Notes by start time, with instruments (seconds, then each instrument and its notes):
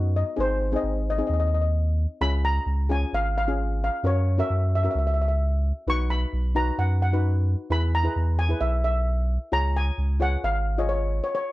Already playing: sub bass F#2, steel pan B3 D#4 F#4 D#5
0.16 steel pan D#5
0.36 sub bass G#1, steel pan C4 D#4 G#4
0.40 steel pan C5
0.72 steel pan C4 D#4 G#4 D#5
0.83 sub bass G#1
1.10 steel pan D#5
1.18 steel pan C4 D#4 G#4 D#5
1.27 sub bass D#2, steel pan D#5
1.34 steel pan D#5
1.40 steel pan D#5
1.47 steel pan D#5
1.54 steel pan D#5
1.62 steel pan D#5
2.21 sub bass C#2, steel pan C#4 F4 G#4 B5
2.45 steel pan A#5
2.66 sub bass C#2
2.89 steel pan C#4 F4 G#4 G#5
3.13 sub bass G#1, steel pan F5
3.38 steel pan F5
3.48 steel pan C#4 F4 G#4
3.84 steel pan F5
4.03 sub bass F#2, steel pan C#4 F#4 A#4 C#5
4.38 steel pan C#4 F#4 A#4 E5
4.50 sub bass F#2
4.75 steel pan E5
4.83 steel pan C#4 F#4 A#4 E5
4.91 steel pan E5
4.95 sub bass C#2, steel pan E5
5.07 steel pan E5
5.14 steel pan E5
5.22 steel pan E5
5.28 steel pan E5
5.87 sub bass B1, steel pan D#4 F#4 B4 C#6
6.10 steel pan B5
6.33 sub bass B1
6.55 steel pan D#4 F#4 B4 A#5
6.78 sub bass F#2, steel pan F#5
7.02 steel pan F#5
7.13 steel pan D#4 F#4 B4
7.70 sub bass E2, steel pan E4 G#4 B4 B5
7.95 steel pan A#5
8.03 steel pan E4 G#4 B4
8.16 sub bass E2
8.39 steel pan G#5
8.49 steel pan E4 G#4 B4
8.60 sub bass B1, steel pan E5
8.84 steel pan E5
9.52 sub bass C#2, steel pan F4 G#4 C#5 A#5
9.77 steel pan G#5
9.98 sub bass C#2
10.20 steel pan F4 G#4 C#5 F#5
10.43 sub bass G#1, steel pan F5
10.78 steel pan F4 G#4 C#5 D#5
10.89 steel pan C#5
11.24 steel pan C#5
11.35 steel pan C#5